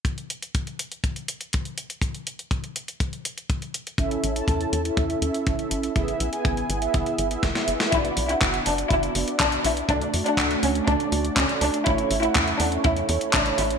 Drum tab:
HH |xxxxxxxxxxxxxxxx|xxxxxxxxxxxxxxxx|xxxxxxxxxxxxxxxx|xxxxxxxxxxxxxxxx|
CP |----------------|----------------|----------------|----------------|
SD |----------------|----------------|----------------|------------oo-o|
BD |o---o---o---o---|o---o---o---o---|o---o---o---o---|o---o---o---o---|

HH |xxoxxxoxxxoxxxox|xxoxxxoxxxoxxxox|xxoxxxoxxxoxxxox|
CP |----x-------x---|----x-------x---|----x-------x---|
SD |----------------|----------------|----------------|
BD |o---o---o---o---|o---o---o---o---|o---o---o---o---|